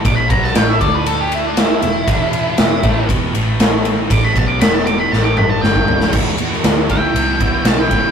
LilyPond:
<<
  \new Staff \with { instrumentName = "Lead electric guitar" } { \time 4/4 \key e \minor \tempo 4 = 118 d'''16 b''16 ais''16 a''16 g''16 e''16 d''16 b'16 a'16 g'16 e'16 d'16 e'4~ | e'2 r2 | d'''16 b''16 a''16 d'''16 b''16 a''16 d'''16 b''16 a''16 d'''16 b''16 a''16 g''4 | r4. g''4. a''16 g''8. | }
  \new Staff \with { instrumentName = "Lead electric guitar" } { \time 4/4 \key e \minor r1 | r1 | r1 | r4. e'4. fis'16 e'8. | }
  \new Staff \with { instrumentName = "Distorted electric guitar" } { \clef bass \time 4/4 \key e \minor <ais, f ais>8 <b, fis b>8 <a, e a>8 <d a d'>2 <e, b,>8 | <e, b, e>4 <e, b,>8 <a, e a>8 <e, b, e>8 <a, e a>4. | <a, e a>8 <b, fis b>8 <e, b, e>4 <a, e a>4 <g, d g>4 | <e, b,>8 <e, b,>8 <e, cis>8 <e, cis>8 <e, b,>8 <e, b,>8 <e, cis>8 <e, cis>8 | }
  \new Staff \with { instrumentName = "Picked electric bass" } { \clef bass \time 4/4 \key e \minor ais,,8 b,,8 a,,8 d,2 e,,8 | e,,4 e,,8 a,,8 e,,8 a,,4. | a,,8 b,,8 e,,4 a,,4 g,,4 | e,4 d,4 c,4 b,,8 r8 | }
  \new DrumStaff \with { instrumentName = "Drums" } \drummode { \time 4/4 <bd cymr>8 <bd cymr>16 sn16 <cymr sn>8 <bd cymr>8 cymr8 cymr8 <cymr sn>8 cymr8 | <bd cymr>8 cymr8 <cymr sn>8 <bd cymr>8 <bd cymr>8 cymr8 <cymr sn>8 cymr8 | <bd cymr>8 <bd cymr>8 <cymr sn>8 cymr8 sn8 toml8 sn16 bd16 tomfh16 sn16 | <cymc bd>8 cymr16 sn16 <cymr sn>8 <bd cymr>8 cymr8 <bd cymr>8 <cymr sn>8 <bd cymr>8 | }
>>